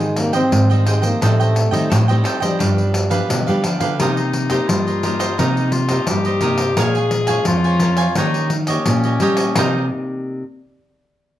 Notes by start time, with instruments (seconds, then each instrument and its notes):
Already playing: nylon-string guitar G#2 D#3, trombone G#3, cavaquinho G#4 C5 D#5 G5
0.00 pandeiro
0.16 nylon-string guitar G3 C4 D#4, trombone A#3, muted cavaquinho stroke, pandeiro
0.33 trombone C4, cavaquinho C5 D#5 G5, pandeiro
0.52 nylon-string guitar G#2 D#3, pandeiro
0.70 nylon-string guitar G3 C4 D#4, cavaquinho C5 D#5 G5, pandeiro
0.86 trombone G#3, cavaquinho G#4 C5 D#5 G5, pandeiro
1.02 trombone A#3, cavaquinho C5 D#5 G5, pandeiro
1.21 nylon-string guitar A2 G3 C4 D#4, trombone A3, cavaquinho A4 C5 D#5 G5, pandeiro
1.40 cavaquinho C5 D#5 G5, pandeiro
1.55 muted cavaquinho stroke, pandeiro
1.71 nylon-string guitar D#3 G3 C4 D#4, cavaquinho C5 D#5 G5, pandeiro
1.90 nylon-string guitar A2, cavaquinho A4 C5 D#5 G5, pandeiro
2.08 nylon-string guitar G3 C4 D#4, cavaquinho C5 D#5 G5, pandeiro
2.24 cavaquinho A4 C5 D#5 G5, pandeiro
2.40 nylon-string guitar F3 B3 D4, trombone G3, cavaquinho C5 D#5 G5, pandeiro
2.59 nylon-string guitar G2, cavaquinho D4 G4 B4 F5, pandeiro
2.78 pandeiro
2.94 muted cavaquinho stroke, pandeiro
3.10 nylon-string guitar F3 B3 D4, cavaquinho G4 B4 F5, pandeiro
3.29 nylon-string guitar B2 D3, pandeiro
3.46 nylon-string guitar F3 G3 B3 D4, cavaquinho G4 B4 F5, pandeiro
3.64 nylon-string guitar F3, cavaquinho D4 G4 B4 F5, pandeiro
3.80 nylon-string guitar D3, cavaquinho G4 B4 F5, pandeiro
3.99 nylon-string guitar C3 A#3 D#4 G4, cavaquinho D#4 A#4 C5 D#5, clarinet D#4, pandeiro
4.17 cavaquinho A#4 C5 D#5, pandeiro
4.33 muted cavaquinho stroke, pandeiro
4.50 nylon-string guitar A#3 D#4 G4, cavaquinho A#4 C5 D#5, pandeiro
4.69 nylon-string guitar G2 G3, clarinet F4, pandeiro
4.87 cavaquinho A#4 C5 D#5, pandeiro
5.03 nylon-string guitar A#3 D#4 G4, cavaquinho D#4 A#4 C5 D#5, pandeiro
5.19 cavaquinho A#4 C5 D#5, pandeiro
5.38 nylon-string guitar C3 A#3 D#4 G4, cavaquinho D#4 A#4 C5 D#5, clarinet D#4, pandeiro
5.57 pandeiro
5.72 clarinet F4, muted cavaquinho stroke, pandeiro
5.89 nylon-string guitar A#3 D#4 G4, cavaquinho A#4 C5 D#5, pandeiro
6.07 nylon-string guitar G2 G3, clarinet G4, pandeiro
6.25 cavaquinho A#4 C5 D#5, pandeiro
6.41 nylon-string guitar C3 A#3 D#4 G4, cavaquinho D#4 A#4 C5 D#5, pandeiro
6.58 cavaquinho A#4 C5 D#5, pandeiro
6.77 nylon-string guitar A#2 G#3 C#4 F4, clarinet G#4, cavaquinho A#4 C#5 F5 G#5, pandeiro
6.95 cavaquinho C#5 F5 G#5, pandeiro
7.11 muted cavaquinho stroke, pandeiro
7.27 nylon-string guitar G#3 C#4 F4, cavaquinho C#5 F5 G#5, pandeiro
7.45 nylon-string guitar F2 F3, clarinet F4, pandeiro
7.64 cavaquinho C#5 F5 G#5, pandeiro
7.80 nylon-string guitar G#3 C#4 F4, cavaquinho A#4 C#5 F5, pandeiro
7.84 cavaquinho G#5
7.97 cavaquinho C#5 F5 G#5, pandeiro
8.15 nylon-string guitar D#3 A#3 C#4 G4, cavaquinho D#4 G4 C#5 D#5, clarinet D#4, pandeiro
8.34 pandeiro
8.50 muted cavaquinho stroke, pandeiro
8.67 nylon-string guitar A#3 C#4 G4, cavaquinho G4 C#5 D#5, pandeiro
8.85 nylon-string guitar A#2, clarinet C#4, pandeiro
9.03 cavaquinho G4 C#5 D#5, pandeiro
9.20 nylon-string guitar G3 A#3 C#4 G4, cavaquinho D#4 G4 C#5 D#5, pandeiro
9.37 cavaquinho G4 C#5 D#5, pandeiro
9.55 nylon-string guitar C3 A#3 D#4 G4, cavaquinho D#4 A#4 C5 D#5, clarinet D#4, pandeiro